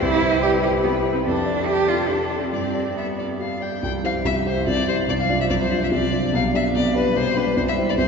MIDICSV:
0, 0, Header, 1, 4, 480
1, 0, Start_track
1, 0, Key_signature, 0, "major"
1, 0, Tempo, 415225
1, 13, Time_signature, 3, 2, 24, 8
1, 1932, Tempo, 429185
1, 4812, Tempo, 414079
1, 9255, End_track
2, 0, Start_track
2, 0, Title_t, "Violin"
2, 0, Program_c, 0, 40
2, 12, Note_on_c, 0, 72, 66
2, 483, Note_on_c, 0, 71, 76
2, 500, Note_off_c, 0, 72, 0
2, 1450, Note_off_c, 0, 71, 0
2, 1457, Note_on_c, 0, 69, 68
2, 2867, Note_off_c, 0, 69, 0
2, 2897, Note_on_c, 0, 74, 47
2, 3326, Note_off_c, 0, 74, 0
2, 3387, Note_on_c, 0, 76, 63
2, 3477, Note_off_c, 0, 76, 0
2, 3631, Note_on_c, 0, 74, 41
2, 3721, Note_off_c, 0, 74, 0
2, 3866, Note_on_c, 0, 77, 61
2, 4112, Note_on_c, 0, 79, 51
2, 4129, Note_off_c, 0, 77, 0
2, 4347, Note_off_c, 0, 79, 0
2, 4352, Note_on_c, 0, 79, 79
2, 4441, Note_off_c, 0, 79, 0
2, 4588, Note_on_c, 0, 77, 81
2, 4677, Note_off_c, 0, 77, 0
2, 4821, Note_on_c, 0, 76, 89
2, 4914, Note_off_c, 0, 76, 0
2, 5071, Note_on_c, 0, 72, 66
2, 5296, Note_off_c, 0, 72, 0
2, 5303, Note_on_c, 0, 74, 86
2, 5538, Note_off_c, 0, 74, 0
2, 5549, Note_on_c, 0, 72, 84
2, 5642, Note_off_c, 0, 72, 0
2, 5792, Note_on_c, 0, 74, 82
2, 5838, Note_off_c, 0, 74, 0
2, 5917, Note_on_c, 0, 77, 74
2, 6146, Note_off_c, 0, 77, 0
2, 6159, Note_on_c, 0, 76, 79
2, 6204, Note_off_c, 0, 76, 0
2, 6264, Note_on_c, 0, 74, 83
2, 6312, Note_off_c, 0, 74, 0
2, 6396, Note_on_c, 0, 72, 75
2, 6627, Note_off_c, 0, 72, 0
2, 6650, Note_on_c, 0, 76, 69
2, 6693, Note_off_c, 0, 76, 0
2, 6761, Note_on_c, 0, 74, 74
2, 7224, Note_off_c, 0, 74, 0
2, 7248, Note_on_c, 0, 77, 89
2, 7340, Note_off_c, 0, 77, 0
2, 7483, Note_on_c, 0, 76, 77
2, 7576, Note_off_c, 0, 76, 0
2, 7718, Note_on_c, 0, 74, 89
2, 7946, Note_off_c, 0, 74, 0
2, 7956, Note_on_c, 0, 71, 72
2, 8191, Note_on_c, 0, 72, 88
2, 8208, Note_off_c, 0, 71, 0
2, 8425, Note_on_c, 0, 71, 83
2, 8443, Note_off_c, 0, 72, 0
2, 8662, Note_off_c, 0, 71, 0
2, 8667, Note_on_c, 0, 72, 87
2, 8713, Note_off_c, 0, 72, 0
2, 8794, Note_on_c, 0, 76, 72
2, 8886, Note_off_c, 0, 76, 0
2, 9040, Note_on_c, 0, 74, 77
2, 9082, Note_off_c, 0, 74, 0
2, 9140, Note_on_c, 0, 72, 86
2, 9253, Note_off_c, 0, 72, 0
2, 9255, End_track
3, 0, Start_track
3, 0, Title_t, "Grand piano"
3, 0, Program_c, 1, 0
3, 0, Control_c, 1, 64, 127
3, 22, Note_on_c, 1, 36, 75
3, 34, Control_c, 1, 64, 0
3, 219, Control_c, 1, 64, 127
3, 256, Note_on_c, 1, 72, 65
3, 492, Note_on_c, 1, 74, 54
3, 636, Note_off_c, 1, 72, 0
3, 730, Note_off_c, 1, 74, 0
3, 739, Note_on_c, 1, 72, 60
3, 978, Note_on_c, 1, 67, 69
3, 1121, Note_off_c, 1, 72, 0
3, 1216, Note_on_c, 1, 72, 55
3, 1361, Note_off_c, 1, 67, 0
3, 1415, Note_off_c, 1, 36, 0
3, 1455, Note_off_c, 1, 72, 0
3, 1458, Note_on_c, 1, 41, 68
3, 1473, Control_c, 1, 64, 0
3, 1667, Control_c, 1, 64, 127
3, 1690, Note_on_c, 1, 74, 53
3, 1931, Note_on_c, 1, 76, 42
3, 2073, Note_off_c, 1, 74, 0
3, 2165, Note_on_c, 1, 74, 53
3, 2168, Note_off_c, 1, 76, 0
3, 2405, Note_on_c, 1, 69, 48
3, 2550, Note_off_c, 1, 74, 0
3, 2646, Note_on_c, 1, 74, 44
3, 2794, Note_off_c, 1, 69, 0
3, 2853, Note_off_c, 1, 41, 0
3, 2889, Note_on_c, 1, 43, 50
3, 2891, Note_off_c, 1, 74, 0
3, 2917, Control_c, 1, 64, 0
3, 3086, Control_c, 1, 64, 127
3, 3135, Note_on_c, 1, 74, 46
3, 3384, Note_on_c, 1, 76, 34
3, 3525, Note_off_c, 1, 74, 0
3, 3622, Note_on_c, 1, 74, 42
3, 3624, Note_off_c, 1, 76, 0
3, 3859, Note_on_c, 1, 67, 45
3, 4007, Note_off_c, 1, 74, 0
3, 4095, Note_on_c, 1, 74, 37
3, 4246, Note_off_c, 1, 67, 0
3, 4297, Note_off_c, 1, 43, 0
3, 4338, Note_off_c, 1, 74, 0
3, 4344, Note_on_c, 1, 48, 48
3, 4345, Note_on_c, 1, 36, 61
3, 4364, Control_c, 1, 64, 0
3, 4563, Control_c, 1, 64, 127
3, 4572, Note_off_c, 1, 36, 0
3, 4572, Note_off_c, 1, 48, 0
3, 4580, Note_on_c, 1, 64, 42
3, 4584, Note_on_c, 1, 67, 46
3, 4588, Note_on_c, 1, 72, 51
3, 4791, Note_off_c, 1, 64, 0
3, 4793, Note_off_c, 1, 67, 0
3, 4796, Note_off_c, 1, 72, 0
3, 4813, Note_on_c, 1, 36, 51
3, 4816, Note_on_c, 1, 48, 54
3, 5049, Note_off_c, 1, 36, 0
3, 5051, Note_off_c, 1, 48, 0
3, 5058, Note_on_c, 1, 64, 47
3, 5063, Note_on_c, 1, 67, 46
3, 5067, Note_on_c, 1, 72, 48
3, 5276, Note_off_c, 1, 64, 0
3, 5278, Note_off_c, 1, 67, 0
3, 5280, Note_off_c, 1, 72, 0
3, 5302, Note_on_c, 1, 48, 56
3, 5304, Note_on_c, 1, 36, 59
3, 5535, Note_off_c, 1, 48, 0
3, 5536, Note_off_c, 1, 36, 0
3, 5539, Note_on_c, 1, 64, 40
3, 5546, Note_on_c, 1, 67, 42
3, 5548, Note_on_c, 1, 72, 48
3, 5757, Note_off_c, 1, 64, 0
3, 5761, Note_off_c, 1, 67, 0
3, 5762, Note_off_c, 1, 72, 0
3, 5783, Note_on_c, 1, 36, 60
3, 5786, Note_on_c, 1, 48, 52
3, 5806, Control_c, 1, 64, 0
3, 5977, Control_c, 1, 64, 127
3, 6016, Note_off_c, 1, 36, 0
3, 6017, Note_off_c, 1, 48, 0
3, 6026, Note_on_c, 1, 62, 50
3, 6032, Note_on_c, 1, 65, 49
3, 6034, Note_on_c, 1, 74, 53
3, 6241, Note_off_c, 1, 62, 0
3, 6244, Note_off_c, 1, 65, 0
3, 6246, Note_off_c, 1, 74, 0
3, 6269, Note_on_c, 1, 36, 55
3, 6269, Note_on_c, 1, 48, 56
3, 6501, Note_off_c, 1, 36, 0
3, 6501, Note_off_c, 1, 48, 0
3, 6507, Note_on_c, 1, 62, 50
3, 6516, Note_on_c, 1, 65, 47
3, 6518, Note_on_c, 1, 74, 50
3, 6723, Note_off_c, 1, 62, 0
3, 6728, Note_off_c, 1, 65, 0
3, 6729, Note_off_c, 1, 74, 0
3, 6745, Note_on_c, 1, 36, 53
3, 6746, Note_on_c, 1, 48, 64
3, 6978, Note_off_c, 1, 36, 0
3, 6979, Note_off_c, 1, 48, 0
3, 6983, Note_on_c, 1, 62, 49
3, 6988, Note_on_c, 1, 65, 45
3, 6991, Note_on_c, 1, 74, 46
3, 7200, Note_off_c, 1, 62, 0
3, 7203, Note_off_c, 1, 65, 0
3, 7204, Note_off_c, 1, 74, 0
3, 7222, Note_on_c, 1, 35, 63
3, 7226, Note_on_c, 1, 47, 51
3, 7249, Control_c, 1, 64, 0
3, 7457, Note_off_c, 1, 35, 0
3, 7459, Note_off_c, 1, 47, 0
3, 7461, Control_c, 1, 64, 127
3, 7470, Note_on_c, 1, 62, 48
3, 7476, Note_on_c, 1, 67, 52
3, 7479, Note_on_c, 1, 74, 50
3, 7684, Note_off_c, 1, 62, 0
3, 7687, Note_off_c, 1, 67, 0
3, 7689, Note_off_c, 1, 74, 0
3, 7712, Note_on_c, 1, 47, 60
3, 7713, Note_on_c, 1, 35, 60
3, 7940, Note_off_c, 1, 47, 0
3, 7941, Note_off_c, 1, 35, 0
3, 7951, Note_on_c, 1, 62, 52
3, 7954, Note_on_c, 1, 67, 55
3, 7961, Note_on_c, 1, 74, 57
3, 8162, Note_off_c, 1, 62, 0
3, 8164, Note_off_c, 1, 67, 0
3, 8168, Note_off_c, 1, 74, 0
3, 8186, Note_on_c, 1, 47, 65
3, 8188, Note_on_c, 1, 35, 56
3, 8416, Note_off_c, 1, 47, 0
3, 8417, Note_off_c, 1, 35, 0
3, 8425, Note_on_c, 1, 62, 50
3, 8430, Note_on_c, 1, 67, 52
3, 8435, Note_on_c, 1, 74, 50
3, 8638, Note_off_c, 1, 62, 0
3, 8640, Note_off_c, 1, 67, 0
3, 8643, Note_off_c, 1, 74, 0
3, 8665, Note_on_c, 1, 36, 58
3, 8665, Note_on_c, 1, 48, 57
3, 8682, Control_c, 1, 64, 0
3, 8892, Control_c, 1, 64, 127
3, 8893, Note_off_c, 1, 36, 0
3, 8893, Note_off_c, 1, 48, 0
3, 8907, Note_on_c, 1, 64, 49
3, 8912, Note_on_c, 1, 67, 53
3, 8915, Note_on_c, 1, 72, 51
3, 9116, Note_off_c, 1, 64, 0
3, 9119, Note_off_c, 1, 67, 0
3, 9121, Note_off_c, 1, 72, 0
3, 9135, Note_on_c, 1, 36, 55
3, 9135, Note_on_c, 1, 48, 56
3, 9255, Note_off_c, 1, 36, 0
3, 9255, Note_off_c, 1, 48, 0
3, 9255, End_track
4, 0, Start_track
4, 0, Title_t, "Cello"
4, 0, Program_c, 2, 42
4, 26, Note_on_c, 2, 64, 108
4, 487, Note_off_c, 2, 64, 0
4, 492, Note_on_c, 2, 67, 101
4, 585, Note_off_c, 2, 67, 0
4, 727, Note_on_c, 2, 67, 85
4, 819, Note_off_c, 2, 67, 0
4, 965, Note_on_c, 2, 59, 81
4, 1058, Note_off_c, 2, 59, 0
4, 1302, Note_on_c, 2, 60, 70
4, 1364, Note_off_c, 2, 60, 0
4, 1449, Note_on_c, 2, 62, 89
4, 1925, Note_on_c, 2, 67, 103
4, 1942, Note_off_c, 2, 62, 0
4, 2171, Note_on_c, 2, 65, 81
4, 2188, Note_off_c, 2, 67, 0
4, 2401, Note_on_c, 2, 62, 62
4, 2418, Note_off_c, 2, 65, 0
4, 2736, Note_on_c, 2, 60, 68
4, 2753, Note_off_c, 2, 62, 0
4, 2892, Note_off_c, 2, 60, 0
4, 2899, Note_on_c, 2, 60, 73
4, 3380, Note_on_c, 2, 59, 60
4, 3397, Note_off_c, 2, 60, 0
4, 3863, Note_off_c, 2, 59, 0
4, 4355, Note_on_c, 2, 52, 59
4, 5742, Note_off_c, 2, 52, 0
4, 5784, Note_on_c, 2, 53, 59
4, 7180, Note_off_c, 2, 53, 0
4, 7226, Note_on_c, 2, 55, 61
4, 9255, Note_off_c, 2, 55, 0
4, 9255, End_track
0, 0, End_of_file